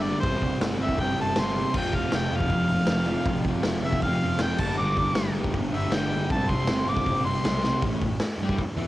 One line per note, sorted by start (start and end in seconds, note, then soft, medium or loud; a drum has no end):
0.00 0.13 G1 medium
0.00 0.23 G2 medium
0.00 0.19 D5 medium
0.04 0.22 G3 medium
0.04 open hi-hat medium
0.09 0.23 D3 medium
0.20 0.51 G1 medium
0.20 0.61 C3 medium
0.20 0.58 C5 loud
0.20 kick loud
0.20 open hi-hat medium
0.24 0.44 G3 loud
0.24 0.40 C4 loud
0.41 0.79 C4 medium
0.41 kick medium
0.41 open hi-hat medium
0.45 0.83 G3 medium
0.60 0.74 G1 medium
0.60 snare loud
0.60 open hi-hat medium
0.79 0.93 G1 medium
0.79 1.02 C4 medium
0.79 0.99 E5 loud
0.79 open hi-hat medium
0.84 0.99 G3 medium
0.89 kick medium
0.98 1.12 G1 loud
0.98 1.36 C3 loud
0.98 1.21 G3 medium
0.98 1.18 G5 loud
0.98 kick loud
0.98 open hi-hat medium
1.02 1.17 C4 loud
1.17 1.31 G1 medium
1.17 1.41 C4 medium
1.17 open hi-hat medium
1.21 1.38 G3 medium
1.21 1.41 A5 medium
1.36 1.64 G1 loud
1.36 1.74 C3 medium
1.36 1.60 G3 medium
1.36 1.75 C6 loud
1.36 snare loud
1.36 open hi-hat medium
1.42 1.56 C4 medium
1.56 4.66 C4 medium
1.56 open hi-hat medium
1.61 1.76 G3 medium
1.74 2.02 F1 loud
1.74 2.50 F2 medium
1.74 1.98 C3 medium
1.74 kick loud
1.74 crash loud
1.78 1.94 F3 loud
1.78 1.97 G5 loud
1.93 2.30 F3 medium
1.93 2.18 F5 medium
1.93 kick medium
1.93 open hi-hat medium
1.99 2.34 C3 medium
2.11 2.26 F1 medium
2.11 snare loud
2.11 open hi-hat medium
2.16 2.38 G5 loud
2.31 2.45 F1 medium
2.31 2.53 F3 medium
2.31 open hi-hat medium
2.35 2.52 C3 medium
2.35 3.44 F5 loud
2.40 kick medium
2.49 2.64 F1 medium
2.49 2.88 F2 loud
2.49 2.73 C3 medium
2.49 kick medium
2.49 open hi-hat medium
2.55 2.69 F3 loud
2.69 2.83 F1 medium
2.69 2.92 F3 medium
2.69 open hi-hat medium
2.74 2.91 C3 medium
2.87 3.15 F1 loud
2.87 3.27 F2 medium
2.87 snare loud
2.87 open hi-hat medium
2.92 3.12 C3 medium
2.92 3.07 F3 medium
3.06 3.31 F3 medium
3.06 open hi-hat medium
3.13 3.30 C3 medium
3.25 3.54 F1 loud
3.25 3.65 F2 loud
3.25 kick loud
3.25 open hi-hat medium
3.31 3.50 C3 loud
3.31 3.46 F3 loud
3.43 kick medium
3.43 open hi-hat medium
3.47 3.88 C3 medium
3.47 3.84 F3 medium
3.63 3.77 F1 medium
3.63 snare loud
3.63 open hi-hat medium
3.81 3.96 F1 medium
3.81 open hi-hat medium
3.85 4.07 F3 medium
3.85 4.02 E5 loud
3.89 4.06 C3 medium
3.89 kick medium
4.01 4.16 F1 medium
4.01 4.40 F2 loud
4.01 4.39 F5 loud
4.01 kick medium
4.01 open hi-hat medium
4.07 4.26 C3 loud
4.07 4.22 F3 loud
4.19 4.34 F1 medium
4.19 4.44 F3 medium
4.19 open hi-hat medium
4.27 4.43 C3 medium
4.37 4.52 F1 medium
4.37 4.58 F2 medium
4.37 snare loud
4.37 open hi-hat medium
4.42 4.60 C3 medium
4.42 4.61 F3 loud
4.42 4.61 G5 loud
4.58 4.73 G1 medium
4.58 4.82 G3 loud
4.58 4.77 A5 loud
4.58 kick loud
4.58 crash loud
4.63 4.78 G2 medium
4.63 4.80 D3 medium
4.77 5.05 G1 loud
4.77 5.53 G2 loud
4.77 4.96 D6 loud
4.81 5.01 D3 loud
4.81 4.98 G3 loud
4.97 5.36 G3 medium
4.97 5.35 D6 loud
4.97 kick medium
4.97 open hi-hat medium
5.02 5.39 D3 medium
5.13 5.28 G1 medium
5.13 snare loud
5.13 open hi-hat medium
5.32 5.47 G1 medium
5.32 open hi-hat medium
5.37 5.56 D3 medium
5.37 5.58 G3 medium
5.44 kick medium
5.54 5.68 G1 loud
5.54 5.90 G2 medium
5.54 5.76 D3 loud
5.54 kick loud
5.54 open hi-hat medium
5.59 5.72 G3 loud
5.71 5.86 G1 medium
5.71 5.95 G3 medium
5.71 5.96 E5 loud
5.71 open hi-hat medium
5.77 5.93 D3 medium
5.89 6.18 G1 loud
5.89 6.29 G2 medium
5.89 snare loud
5.89 open hi-hat medium
5.94 6.14 D3 medium
5.94 6.11 G3 medium
5.94 6.30 G5 loud
6.12 6.31 D3 medium
6.12 6.29 G3 medium
6.12 open hi-hat medium
6.30 6.58 G1 loud
6.30 6.69 C3 loud
6.30 6.51 A5 loud
6.30 kick loud
6.30 open hi-hat medium
6.34 6.54 G3 loud
6.34 6.48 C4 loud
6.49 6.85 C4 medium
6.49 6.86 C6 loud
6.49 kick medium
6.49 open hi-hat medium
6.55 6.90 G3 medium
6.67 6.81 G1 medium
6.67 snare loud
6.67 open hi-hat medium
6.86 7.00 G1 medium
6.86 7.09 C4 medium
6.86 7.24 D6 loud
6.86 open hi-hat medium
6.91 7.07 G3 medium
6.97 kick medium
7.06 7.20 G1 medium
7.06 7.43 C3 loud
7.06 7.29 G3 loud
7.06 kick loud
7.06 open hi-hat medium
7.10 7.24 C4 loud
7.24 7.39 G1 medium
7.24 7.48 C4 medium
7.24 7.80 C6 loud
7.24 open hi-hat medium
7.30 7.45 G3 medium
7.44 7.73 B1 loud
7.44 7.81 C3 medium
7.44 7.67 G3 medium
7.44 snare loud
7.44 open hi-hat medium
7.49 7.63 C4 medium
7.64 7.81 C4 medium
7.64 snare medium
7.68 7.84 G3 medium
7.82 8.00 A1 medium
7.82 8.02 A2 medium
7.82 kick loud
7.82 open hi-hat medium
7.86 8.02 A3 loud
8.02 8.19 A1 medium
8.02 8.18 A2 medium
8.02 kick medium
8.02 open hi-hat medium
8.20 snare loud
8.20 open hi-hat medium
8.38 8.56 G2 medium
8.38 open hi-hat medium
8.42 8.59 G3 loud
8.42 8.59 G4 loud
8.49 kick medium
8.58 muted picked electric bass stroke soft
8.58 muted distorted electric guitar stroke medium
8.58 kick loud
8.58 open hi-hat medium
8.76 8.87 E2 medium
8.76 8.87 E3 medium
8.76 8.87 E4 loud
8.76 open hi-hat medium